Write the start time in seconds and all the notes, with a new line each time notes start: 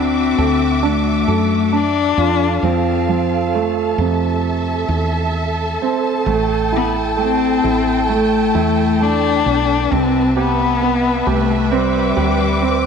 Already playing: D2 C4 D4 F#4 A4 E5 D6
0.38 D2 A4
0.83 A3 D4
1.27 F#2 A4
1.73 D4
2.17 F2 F4 A4 F5 A5
2.63 F2 F3 C4
3.09 F3
3.55 A3
3.98 F2 C3 E5
4.89 E2
5.82 C4
6.25 A1 A3 G5
6.72 B3 E4
7.17 A3
7.22 C4
7.64 A1 E4
8.09 A3
8.55 E2 E4
9.00 A3 D4
9.46 B1
9.91 C2 C3 C4 B4 E5
10.37 B3 G4
10.82 B3
11.27 C2 A3 G4
11.72 G3 C4 D6
12.17 D2 G4
12.61 C4